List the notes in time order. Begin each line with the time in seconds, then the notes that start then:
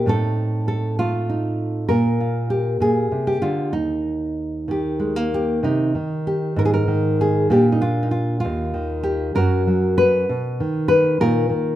0.06 A2 A3 C4 D#4 A4
0.68 A4
0.99 A3 F4
1.29 D#4
1.89 A#2 A#4
2.20 F4
2.50 G4
2.80 A#2 G#4
3.12 C3
3.27 G4
3.42 D3 F4
3.72 D#2 D#4
4.68 D#3 G4
5.00 G#3
5.16 A#3
5.34 G4
5.63 C3 D#4
5.95 D#3
6.27 G4
6.56 G#2 A#4
6.65 G#4
6.74 A#4
6.88 D#3
7.21 G#4
7.50 A#2 D4 G4
7.72 D#4
7.81 D4 F4
8.03 D#4
8.11 F4
8.40 F4
8.45 D#2
8.74 D#3
9.03 G4
9.35 F#2 F#3 C#4 F#4 A#4
9.67 F#3
9.98 B4
10.29 B2
10.60 D#3
10.88 B4
11.20 A#2 D#3 D#4 F4 A#4
11.49 D#3